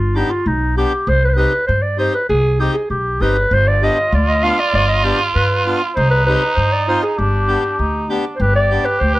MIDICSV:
0, 0, Header, 1, 5, 480
1, 0, Start_track
1, 0, Tempo, 610376
1, 849, Time_signature, 2, 2, 24, 8
1, 7231, End_track
2, 0, Start_track
2, 0, Title_t, "Clarinet"
2, 0, Program_c, 0, 71
2, 0, Note_on_c, 0, 65, 76
2, 127, Note_on_c, 0, 63, 71
2, 139, Note_off_c, 0, 65, 0
2, 238, Note_on_c, 0, 65, 75
2, 250, Note_off_c, 0, 63, 0
2, 368, Note_on_c, 0, 63, 69
2, 380, Note_off_c, 0, 65, 0
2, 607, Note_off_c, 0, 63, 0
2, 611, Note_on_c, 0, 67, 76
2, 855, Note_on_c, 0, 72, 96
2, 867, Note_off_c, 0, 67, 0
2, 979, Note_on_c, 0, 71, 85
2, 991, Note_off_c, 0, 72, 0
2, 1013, Note_on_c, 0, 72, 70
2, 1025, Note_off_c, 0, 71, 0
2, 1046, Note_on_c, 0, 71, 77
2, 1058, Note_off_c, 0, 72, 0
2, 1083, Note_off_c, 0, 71, 0
2, 1088, Note_on_c, 0, 71, 83
2, 1310, Note_off_c, 0, 71, 0
2, 1315, Note_on_c, 0, 72, 78
2, 1433, Note_on_c, 0, 74, 80
2, 1444, Note_off_c, 0, 72, 0
2, 1562, Note_off_c, 0, 74, 0
2, 1571, Note_on_c, 0, 72, 81
2, 1682, Note_off_c, 0, 72, 0
2, 1687, Note_on_c, 0, 71, 80
2, 1797, Note_off_c, 0, 71, 0
2, 1802, Note_on_c, 0, 68, 105
2, 2048, Note_on_c, 0, 67, 87
2, 2060, Note_off_c, 0, 68, 0
2, 2150, Note_off_c, 0, 67, 0
2, 2154, Note_on_c, 0, 68, 74
2, 2274, Note_off_c, 0, 68, 0
2, 2286, Note_on_c, 0, 67, 79
2, 2531, Note_on_c, 0, 71, 92
2, 2542, Note_off_c, 0, 67, 0
2, 2777, Note_on_c, 0, 72, 104
2, 2789, Note_off_c, 0, 71, 0
2, 2896, Note_on_c, 0, 74, 93
2, 2908, Note_off_c, 0, 72, 0
2, 3018, Note_on_c, 0, 75, 87
2, 3029, Note_off_c, 0, 74, 0
2, 3256, Note_off_c, 0, 75, 0
2, 3261, Note_on_c, 0, 74, 77
2, 3371, Note_on_c, 0, 75, 86
2, 3382, Note_off_c, 0, 74, 0
2, 3488, Note_on_c, 0, 77, 79
2, 3500, Note_off_c, 0, 75, 0
2, 3616, Note_on_c, 0, 74, 90
2, 3628, Note_off_c, 0, 77, 0
2, 3731, Note_off_c, 0, 74, 0
2, 3736, Note_on_c, 0, 74, 114
2, 3845, Note_on_c, 0, 75, 95
2, 3857, Note_off_c, 0, 74, 0
2, 3959, Note_on_c, 0, 74, 83
2, 3971, Note_off_c, 0, 75, 0
2, 4086, Note_off_c, 0, 74, 0
2, 4210, Note_on_c, 0, 71, 82
2, 4547, Note_off_c, 0, 71, 0
2, 4685, Note_on_c, 0, 72, 89
2, 4800, Note_off_c, 0, 72, 0
2, 4804, Note_on_c, 0, 71, 96
2, 4920, Note_off_c, 0, 71, 0
2, 4927, Note_on_c, 0, 71, 96
2, 5156, Note_on_c, 0, 72, 83
2, 5168, Note_off_c, 0, 71, 0
2, 5293, Note_on_c, 0, 74, 78
2, 5304, Note_off_c, 0, 72, 0
2, 5408, Note_off_c, 0, 74, 0
2, 5413, Note_on_c, 0, 72, 81
2, 5524, Note_off_c, 0, 72, 0
2, 5531, Note_on_c, 0, 68, 81
2, 5648, Note_on_c, 0, 67, 90
2, 5660, Note_off_c, 0, 68, 0
2, 6368, Note_off_c, 0, 67, 0
2, 6571, Note_on_c, 0, 72, 65
2, 6616, Note_on_c, 0, 71, 100
2, 6628, Note_off_c, 0, 72, 0
2, 6725, Note_off_c, 0, 71, 0
2, 6730, Note_on_c, 0, 74, 106
2, 6962, Note_on_c, 0, 71, 91
2, 6973, Note_off_c, 0, 74, 0
2, 7074, Note_on_c, 0, 72, 88
2, 7086, Note_off_c, 0, 71, 0
2, 7188, Note_off_c, 0, 72, 0
2, 7192, Note_on_c, 0, 71, 79
2, 7231, Note_off_c, 0, 71, 0
2, 7231, End_track
3, 0, Start_track
3, 0, Title_t, "Trombone"
3, 0, Program_c, 1, 57
3, 2777, Note_on_c, 1, 65, 127
3, 4696, Note_on_c, 1, 63, 107
3, 4708, Note_off_c, 1, 65, 0
3, 5660, Note_on_c, 1, 62, 95
3, 5672, Note_off_c, 1, 63, 0
3, 6128, Note_on_c, 1, 63, 82
3, 6140, Note_off_c, 1, 62, 0
3, 6372, Note_on_c, 1, 62, 70
3, 6383, Note_off_c, 1, 63, 0
3, 6607, Note_off_c, 1, 62, 0
3, 6612, Note_on_c, 1, 67, 126
3, 7231, Note_off_c, 1, 67, 0
3, 7231, End_track
4, 0, Start_track
4, 0, Title_t, "Accordion"
4, 0, Program_c, 2, 21
4, 116, Note_on_c, 2, 62, 52
4, 124, Note_on_c, 2, 67, 55
4, 125, Note_on_c, 2, 59, 59
4, 242, Note_off_c, 2, 62, 0
4, 246, Note_off_c, 2, 59, 0
4, 246, Note_off_c, 2, 67, 0
4, 606, Note_on_c, 2, 59, 58
4, 608, Note_on_c, 2, 67, 67
4, 610, Note_on_c, 2, 62, 49
4, 727, Note_off_c, 2, 59, 0
4, 728, Note_off_c, 2, 67, 0
4, 729, Note_off_c, 2, 62, 0
4, 1071, Note_on_c, 2, 60, 56
4, 1075, Note_on_c, 2, 63, 56
4, 1076, Note_on_c, 2, 67, 60
4, 1200, Note_off_c, 2, 60, 0
4, 1202, Note_off_c, 2, 63, 0
4, 1203, Note_off_c, 2, 67, 0
4, 1555, Note_on_c, 2, 60, 59
4, 1559, Note_on_c, 2, 63, 54
4, 1561, Note_on_c, 2, 67, 59
4, 1683, Note_off_c, 2, 60, 0
4, 1685, Note_off_c, 2, 63, 0
4, 1686, Note_off_c, 2, 67, 0
4, 2041, Note_on_c, 2, 67, 66
4, 2042, Note_on_c, 2, 63, 45
4, 2045, Note_on_c, 2, 60, 58
4, 2166, Note_off_c, 2, 67, 0
4, 2167, Note_off_c, 2, 63, 0
4, 2168, Note_off_c, 2, 60, 0
4, 2526, Note_on_c, 2, 60, 57
4, 2526, Note_on_c, 2, 63, 53
4, 2528, Note_on_c, 2, 67, 64
4, 2649, Note_off_c, 2, 63, 0
4, 2650, Note_off_c, 2, 60, 0
4, 2650, Note_off_c, 2, 67, 0
4, 3006, Note_on_c, 2, 67, 60
4, 3011, Note_on_c, 2, 62, 53
4, 3013, Note_on_c, 2, 59, 52
4, 3130, Note_off_c, 2, 67, 0
4, 3132, Note_off_c, 2, 62, 0
4, 3133, Note_off_c, 2, 59, 0
4, 3486, Note_on_c, 2, 62, 50
4, 3486, Note_on_c, 2, 65, 64
4, 3487, Note_on_c, 2, 59, 63
4, 3610, Note_off_c, 2, 59, 0
4, 3610, Note_off_c, 2, 62, 0
4, 3610, Note_off_c, 2, 65, 0
4, 3962, Note_on_c, 2, 59, 58
4, 3963, Note_on_c, 2, 62, 59
4, 3965, Note_on_c, 2, 67, 63
4, 4088, Note_off_c, 2, 59, 0
4, 4088, Note_off_c, 2, 62, 0
4, 4089, Note_off_c, 2, 67, 0
4, 4449, Note_on_c, 2, 59, 54
4, 4451, Note_on_c, 2, 65, 63
4, 4455, Note_on_c, 2, 62, 53
4, 4571, Note_off_c, 2, 59, 0
4, 4573, Note_off_c, 2, 65, 0
4, 4574, Note_off_c, 2, 62, 0
4, 4934, Note_on_c, 2, 67, 64
4, 4935, Note_on_c, 2, 60, 61
4, 4939, Note_on_c, 2, 63, 57
4, 5053, Note_off_c, 2, 67, 0
4, 5054, Note_off_c, 2, 60, 0
4, 5056, Note_off_c, 2, 63, 0
4, 5412, Note_on_c, 2, 65, 62
4, 5414, Note_on_c, 2, 63, 55
4, 5417, Note_on_c, 2, 60, 52
4, 5532, Note_off_c, 2, 65, 0
4, 5533, Note_off_c, 2, 63, 0
4, 5534, Note_off_c, 2, 60, 0
4, 5883, Note_on_c, 2, 67, 58
4, 5884, Note_on_c, 2, 59, 57
4, 5884, Note_on_c, 2, 62, 52
4, 6007, Note_off_c, 2, 59, 0
4, 6007, Note_off_c, 2, 62, 0
4, 6007, Note_off_c, 2, 67, 0
4, 6366, Note_on_c, 2, 62, 49
4, 6369, Note_on_c, 2, 59, 71
4, 6369, Note_on_c, 2, 67, 69
4, 6487, Note_off_c, 2, 62, 0
4, 6488, Note_off_c, 2, 59, 0
4, 6489, Note_off_c, 2, 67, 0
4, 6847, Note_on_c, 2, 67, 61
4, 6852, Note_on_c, 2, 59, 59
4, 6857, Note_on_c, 2, 62, 59
4, 6967, Note_off_c, 2, 67, 0
4, 6969, Note_off_c, 2, 59, 0
4, 6971, Note_off_c, 2, 62, 0
4, 7231, End_track
5, 0, Start_track
5, 0, Title_t, "Upright bass"
5, 0, Program_c, 3, 32
5, 0, Note_on_c, 3, 31, 90
5, 169, Note_off_c, 3, 31, 0
5, 360, Note_on_c, 3, 35, 77
5, 651, Note_off_c, 3, 35, 0
5, 841, Note_on_c, 3, 36, 94
5, 1132, Note_off_c, 3, 36, 0
5, 1325, Note_on_c, 3, 43, 88
5, 1615, Note_off_c, 3, 43, 0
5, 1804, Note_on_c, 3, 36, 83
5, 2094, Note_off_c, 3, 36, 0
5, 2280, Note_on_c, 3, 35, 62
5, 2501, Note_off_c, 3, 35, 0
5, 2520, Note_on_c, 3, 31, 73
5, 2742, Note_off_c, 3, 31, 0
5, 2761, Note_on_c, 3, 31, 91
5, 3053, Note_off_c, 3, 31, 0
5, 3243, Note_on_c, 3, 38, 90
5, 3534, Note_off_c, 3, 38, 0
5, 3723, Note_on_c, 3, 31, 85
5, 4014, Note_off_c, 3, 31, 0
5, 4210, Note_on_c, 3, 43, 74
5, 4499, Note_off_c, 3, 43, 0
5, 4694, Note_on_c, 3, 36, 100
5, 4981, Note_off_c, 3, 36, 0
5, 5167, Note_on_c, 3, 43, 89
5, 5456, Note_off_c, 3, 43, 0
5, 5651, Note_on_c, 3, 31, 84
5, 5938, Note_off_c, 3, 31, 0
5, 6127, Note_on_c, 3, 38, 72
5, 6415, Note_off_c, 3, 38, 0
5, 6603, Note_on_c, 3, 31, 92
5, 6891, Note_off_c, 3, 31, 0
5, 7084, Note_on_c, 3, 38, 71
5, 7231, Note_off_c, 3, 38, 0
5, 7231, End_track
0, 0, End_of_file